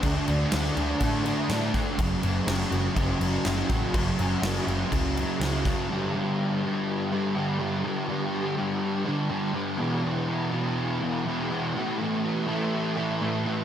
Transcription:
<<
  \new Staff \with { instrumentName = "Distorted electric guitar" } { \clef bass \time 4/4 \key g \lydian \tempo 4 = 123 <d a d'>8 <a d'>8 <d a d'>8 <a d'>8 <d a d'>8 <a d'>8 <d a d'>8 <a d'>8 | <fis, cis fis>8 <cis fis>8 <fis, cis fis>8 <cis fis>8 <fis, cis fis>8 <cis fis>8 <fis, cis fis>8 <cis fis>8 | <fis, cis fis>8 <cis fis>8 <fis, cis fis>8 <cis fis>8 <fis, cis fis>8 <cis fis>8 <fis, cis fis>8 <cis fis>8 | <g, d g>8 <d g>4 <d g>4 <d g>8 <g, d g>8 <d g>8 |
<g, d g>8 <d g>4 <d g>4 <d g>8 <g, d g>8 <d g>8 | <e, b, e>8 <b, e>4 <b, e>4 <b, e>8 <e, b, e>8 <b, e>8 | <a, e a>8 <e a>4 <e a>4 <e a>8 <a, e a>8 <e a>8 | }
  \new Staff \with { instrumentName = "Picked electric bass" } { \clef bass \time 4/4 \key g \lydian d,8 d,8 d,8 d,8 a,4 a,4 | fis,,8 fis,,8 fis,,8 fis,,8 fis,,8 fis,,8 fis,,8 a,,8 | fis,,8 fis,,8 fis,,8 fis,,8 cis,4 cis,4 | r1 |
r1 | r1 | r1 | }
  \new DrumStaff \with { instrumentName = "Drums" } \drummode { \time 4/4 <cymc bd>8 cymc8 <cymc sn>16 sn16 cymc8 <cymc bd>8 cymc8 <cymc sn>8 <cymc bd sn>8 | <cymc bd>8 cymc8 <cymc sn>16 sn16 cymc8 <cymc bd>8 cymc8 <cymc sn>8 <cymc bd sn>8 | <cymc bd>8 cymc8 <cymc sn>16 sn16 cymc8 <cymc bd>8 cymc8 <cymc sn>8 <cymc bd sn>8 | r4 r4 r4 r4 |
r4 r4 r4 r4 | r4 r4 r4 r4 | r4 r4 r4 r4 | }
>>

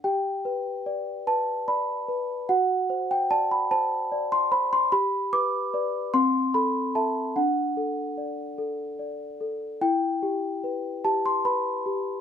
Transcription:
\new Staff \with { instrumentName = "Celesta" } { \time 6/8 \key g \major \tempo 4. = 49 << { g''4. a''8 b''4 | fis''8. g''16 a''16 b''16 a''8. c'''16 b''16 c'''16 | b''8 d'''4 c'''8 b''8 a''8 | fis''4. r4. |
g''4. a''16 c'''16 b''4 | } \\ { g'8 b'8 d''8 b'8 d''8 b'8 | fis'8 c''8 d''8 c''8 d''8 c''8 | g'8 b'8 <b' d''>8 c'8 a'8 <a' e''>8 | d'8 a'8 d''8 a'8 d''8 a'8 |
e'8 g'8 b'8 g'8 b'8 g'8 | } >> }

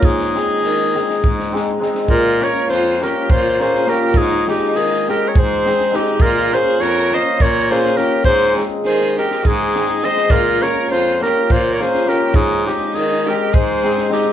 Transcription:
<<
  \new Staff \with { instrumentName = "Clarinet" } { \time 7/8 \key aes \major \tempo 4 = 102 aes'2. r8 | bes'8 des''8 c''8 bes'8 c''8 c''8 bes'8 | aes'8 g'8 aes'8 bes'16. des''32 c''4 g'8 | bes'8 c''8 des''8 ees''8 des''8 c''8 bes'8 |
c''8 r8 c''8 bes'8 aes'4 ees''8 | bes'8 des''8 c''8 bes'8 c''16. des''32 c''8 bes'8 | aes'8 g'8 aes'8 bes'8 c''4 g'8 | }
  \new Staff \with { instrumentName = "Violin" } { \time 7/8 \key aes \major ees'2. r8 | f'8 bes'8 f'8 g'8 f'8 aes'8 g'8 | ees'8 ees'8 ees'8 g'16. bes'32 aes'4 ees'8 | f'8 aes'8 bes'8 c''8 bes'8 aes'8 g'8 |
aes'8 r8 aes'8 g'8 ees'4 c''8 | f'8 bes'8 f'8 g'8 f'16. bes'32 aes'8 g'8 | ees'8 ees'8 ees'8 g'8 aes'4 ees'8 | }
  \new Staff \with { instrumentName = "Hammered dulcimer" } { \time 7/8 \key aes \major r8 <aes c' ees' aes'>8 r8 <aes c' ees' aes'>8 r8 <aes c' ees' aes'>8 <aes c' ees' aes'>8 | r8 <bes des' f' bes'>8 r8 <bes des' f' bes'>8 r8 <bes des' f' bes'>8 <bes des' f' bes'>8 | r8 <aes c' ees' aes'>8 r8 <aes c' ees' aes'>8 r8 <aes c' ees' aes'>8 <aes c' ees' aes'>8 | r8 <bes des' f' bes'>8 r8 <bes des' f' bes'>8 r8 <bes des' f' bes'>8 <bes des' f' bes'>8 |
r8 <aes c' ees' aes'>8 r8 <aes c' ees' aes'>8 r8 <aes c' ees' aes'>8 <aes c' ees' aes'>8 | r8 <bes des' f' bes'>8 r8 <bes des' f' bes'>8 r8 <bes des' f' bes'>8 <bes des' f' bes'>8 | r8 <aes c' ees' aes'>8 r8 <aes c' ees' aes'>8 r8 <aes c' ees' aes'>8 <aes c' ees' aes'>8 | }
  \new Staff \with { instrumentName = "Baritone saxophone" } { \clef bass \time 7/8 \key aes \major aes,4 ees4 aes,4. | bes,4 f,4 bes,4. | aes,4 ees4 aes,4 r8 | bes,4 f,4 bes,4. |
aes,4 ees4 aes,4. | bes,4 f,4 bes,4 r8 | aes,4 ees4 aes,4. | }
  \new DrumStaff \with { instrumentName = "Drums" } \drummode { \time 7/8 bd16 sn16 sn8 sn8 sn16 sn16 bd16 sn16 sn8 sn16 sn16 | bd8 sn8 sn8 sn8 bd8 sn16 sn16 sn8 | bd8 sn8 sn8 sn8 bd8 sn16 sn16 sn8 | bd8 sn8 sn8 sn8 bd8 sn16 sn16 sn8 |
bd16 sn16 sn8 sn16 sn16 sn16 sn16 bd8 sn8 sn16 sn16 | bd8 sn8 sn8 sn8 bd8 sn16 sn16 sn8 | bd8 sn8 sn8 sn8 bd8 sn16 sn16 sn8 | }
>>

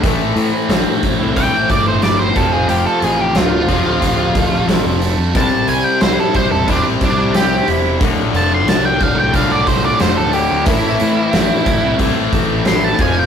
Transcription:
<<
  \new Staff \with { instrumentName = "Lead electric guitar" } { \time 4/4 \key a \phrygian \tempo 4 = 90 r2 g''8 d''16 c''16 d''16 c''16 a'16 gis'16 | g'16 a'16 gis'16 g'16 f'2 r4 | a''8 gis''16 g''16 c''16 a'16 c''16 a'16 d'16 r16 d'8 g'8 r8 | r8 a''16 c'''16 a''16 g''16 f''16 g''16 f''16 d''16 c''16 d''16 c''16 a'16 g'8 |
e'2 r4 c'''16 a''16 gis''16 g''16 | }
  \new Staff \with { instrumentName = "String machine" } { \time 4/4 \key a \phrygian <c' e' a'>2.~ <c' e' a'>8 <c' f' a'>8~ | <c' f' a'>1 | <c' e' g'>1 | <d' f' a'>1 |
<c' e' a'>2.~ <c' e' a'>8 <c' f' a'>8 | }
  \new Staff \with { instrumentName = "Overdriven electric guitar" } { \time 4/4 \key a \phrygian a,8 e8 c'8 e'8 a8 c'8 e'8 f,8 | f,8 c8 a8 c'8 f8 a8 c'8 a8 | c8 g8 e'8 g'8 c'8 e'8 g'8 e'8 | d,8 a,8 d8 a8 a,8 d8 a8 d8 |
a,8 e8 c'8 e'8 a8 c'8 e'8 f,8 | }
  \new Staff \with { instrumentName = "Distorted electric guitar" } { \clef bass \time 4/4 \key a \phrygian <a, e a>2 <a, e a>4. <f, c f>8~ | <f, c f>4. <f, c f>2 r8 | <c g c'>2 <c g c'>2 | <d, a, d>2 <d, a, d>2 |
<a, e a>2 <a, e a>4. <f, c f>8 | }
  \new Staff \with { instrumentName = "Picked electric bass" } { \clef bass \time 4/4 \key a \phrygian a,,16 r16 a,16 r16 a,,16 r16 a,,16 c,8 r16 g,,4 f,,8 | f,,16 r16 a,,8 d,,8 f,,16 d,,4~ d,,16 a,,16 f,,8 f,16 | c,16 r16 c,16 r16 c,16 r16 c,16 e,,8 r16 c,4 e,,8 | d,,16 r16 f,,8 c,8 d,,16 c,4~ c,16 f,,16 d,,8 d,16 |
a,,16 r16 a,16 r16 a,,16 r16 a,,16 c,8 r16 a,,4 f,,8 | }
  \new DrumStaff \with { instrumentName = "Drums" } \drummode { \time 4/4 <hho bd>8 hho8 <hho sn>8 <hho bd>8 <hho bd>8 <hho bd>8 <hho sn>8 <hho bd sn>8 | hho8 hho8 <hho sn>8 <hho bd>8 <hho bd>8 <hho bd>8 <hho sn>8 <hho sn>8 | <hho bd>8 hho8 <hho sn>8 <hho bd>8 <hho bd>8 <hho bd>8 <hho sn>8 hho8 | <hho bd>8 hho8 <hho sn>8 <hho bd>8 <hho bd>8 <hho bd>8 <hho sn>8 hho8 |
<hho bd>8 hho8 <hho sn>8 <hho bd>8 <hho bd>8 <hho bd>8 <hho sn>8 <hho bd>8 | }
>>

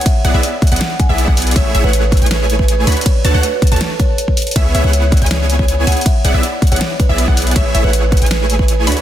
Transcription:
<<
  \new Staff \with { instrumentName = "Synth pluck" } { \time 4/4 \key a \major \tempo 4 = 160 r8 fis''16 e''16 r8. fis''16 r8. e''8 fis''8. | e''8 e''16 fis''4 gis''4.~ gis''16 b''16 r16 | r8 a''16 fis''16 r8. a''16 r2 | e''8 e''16 fis''4 gis''4.~ gis''16 gis''16 r16 |
r8 fis''16 e''16 r8. fis''16 r8. e''8 fis''8. | e''8 e''16 fis''4 gis''4.~ gis''16 b''16 r16 | }
  \new Staff \with { instrumentName = "Kalimba" } { \time 4/4 \key a \major e''16 r16 d''16 r16 d''8 r16 fis''8 r16 gis''4~ gis''16 r16 | cis''8 r16 b'8 r16 b'16 r16 b'8 r16 b'8 r16 d''16 r16 | cis''16 r16 b'16 r16 b'8 r16 a'8 r16 cis''4~ cis''16 r16 | e''8 r16 cis''8 r16 d''16 r16 cis''8 r16 cis''8 r16 fis''16 r16 |
e''16 r16 d''16 r16 d''8 r16 cis''8 r16 b'4~ b'16 r16 | cis''8 r16 b'8 r16 b'16 r16 b'8 r16 b'8 r16 d''16 r16 | }
  \new Staff \with { instrumentName = "Supersaw synth" } { \time 4/4 \key a \major r8 <b e' gis' d'' fis''>16 <b e' gis' d'' e''>16 r8. <b e' gis' d'' fis''>16 r8. <b e' gis' d'' e''>8 <b fis''>8. | <a e' gis' cis'' e''>8 <a e' gis' cis'' e''>16 <a e' gis' cis'' fis''>4 <a e' gis' cis'' gis''>4.~ <a e' gis' cis'' gis''>16 <a d' fis' cis'' b''>16 r16 | r8 <a d' fis' cis'' a''>16 <a d' fis' cis'' fis''>16 r8. <a d' fis' cis'' a''>16 r2 | <b e' gis' cis'' e''>8 <b e' gis' cis'' e''>16 <b e' gis' cis'' fis''>4 <b e' gis' cis'' gis''>4.~ <b e' gis' cis'' gis''>16 <b e' gis' cis'' gis''>16 r16 |
r8 <b e' gis' d'' fis''>16 <b e' gis' d'' e''>16 r8. <b e' gis' d'' fis''>16 r8. <b e' gis' d'' e''>8 <b e' gis' d''>8. | <a e' gis' cis'' e''>8 <a e' gis' cis'' e''>16 <a e' gis' cis'' fis''>4 <a e' gis' cis'' gis''>4.~ <a e' gis' cis'' gis''>16 <a d' fis' cis'' b''>16 r16 | }
  \new Staff \with { instrumentName = "808-style bass" } { \clef bass \time 4/4 \key a \major r8 b,,16 b,,16 r8. b,,16 r8. b,,8 b,,8. | a,,8 a,,16 a,,4 a,,4.~ a,,16 d,16 r16 | r8 d,16 d,16 r8. d,16 r2 | cis,8 cis,16 cis,4 cis,4.~ cis,16 cis,16 r16 |
r8 b,,16 b,,16 r8. b,,16 r8. b,,8 b,,8. | a,,8 a,,16 a,,4 a,,4.~ a,,16 d,16 r16 | }
  \new DrumStaff \with { instrumentName = "Drums" } \drummode { \time 4/4 <hh bd cymr>8 hh8 hh8 <hh bd>32 hh32 hh32 hh32 <cymr sn>8 <hh bd>8 hh16 bd16 hho32 hh32 hh32 hh32 | <hh bd cymr>8 hh8 hh8 <hh bd>32 hh32 hh32 hh32 <hh cymr sn>8 hh16 bd16 hh8 hho32 hh32 hh32 hh32 | <hh bd cymr>8 hh8 hh8 <hh bd>32 hh32 hh32 hh32 <hh cymr sn>8 <hh bd>8 hh16 bd16 hho32 hh32 hh32 hh32 | <hh bd cymr>8 hh8 hh8 <hh bd>32 hh32 hh32 hh32 <cymr sn>8 hh16 bd16 hh8 hho32 hh32 hh32 hh32 |
<hh bd cymr>8 hh8 hh8 <hh bd>32 hh32 hh32 hh32 <hh cymr sn>8 <hh bd>8 hh16 bd16 hho32 hh32 hh32 hh32 | <hh bd cymr>8 hh8 hh8 <hh bd>32 hh32 hh32 hh32 <cymr sn>8 hh16 bd16 hh8 hho32 hh32 hh16 | }
>>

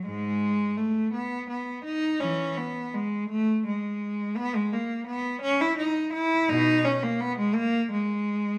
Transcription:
\new Staff \with { instrumentName = "Cello" } { \time 3/4 \key gis \phrygian \tempo 4 = 84 <gis, gis>4 a8 b8 b8 dis'8 | <e cis'>8 b8 gis8 a8 gis4 | \key gis \minor b16 gis16 ais8 b8 cis'16 e'16 dis'8 e'8 | <b, dis'>8 cis'16 ais16 b16 gis16 ais8 gis4 | }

